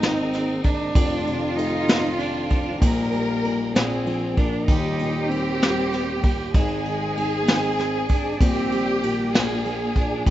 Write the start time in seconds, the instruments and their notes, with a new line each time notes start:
Already playing: grand piano G#1 G#2 D#3 G#3, tonewheel organ D#3 G#3 A#3 C4 G#4, violin section D#4
0.01 grand piano D#3, cello C4, snare, ride
0.33 snare, ride
0.64 cello D4, kick, ride
0.95 grand piano F1 F2, tonewheel organ D#3 F3 A3 F4, violin section F4, kick, ride
1.27 grand piano C3, ride
1.56 grand piano A3, cello D#4, ride
1.88 grand piano C4, snare, ride
2.18 cello D4, ride
2.50 kick, ride
2.80 grand piano A#1 A#2, tonewheel organ A#2 G3 A#3 D#4, cello A#3, violin section A#4, kick, ride
3.12 grand piano G3, ride
3.44 grand piano A#2, ride
3.74 grand piano A#1 A#2, tonewheel organ F3 D4, cello C4, violin section G#4, snare, ride
4.06 grand piano F3, ride
4.37 grand piano A#3, cello D4, kick, ride
4.66 tonewheel organ D#3 G3, cello D#4, violin section G4, kick, ride
4.70 grand piano D#1 D#2
4.99 grand piano A#2, ride
5.28 grand piano D#3, cello C4, ride
5.62 grand piano G3, snare, ride
5.93 snare, ride
6.22 cello A#3, kick, ride
6.53 grand piano G#1 G#2, cello G#3, tonewheel organ G#3 C4, violin section G#4, kick, ride
6.85 grand piano D#3, ride
7.17 grand piano G#2, ride
7.47 grand piano D#3, cello C4, snare, ride
7.78 snare, ride
8.09 cello D4, kick, ride
8.40 grand piano A#1 A#2, tonewheel organ A#2 G3 A#3, cello C4, violin section G4, kick, ride
8.72 grand piano G3, ride
9.03 grand piano A#2, cello A#3, ride
9.33 grand piano A#1 A#2, tonewheel organ F3 D4, violin section G#4, snare, ride
9.65 grand piano F3, ride
9.95 grand piano A#2, cello D4, kick, ride
10.26 tonewheel organ D#3 G3 F4, violin section G4, kick, ride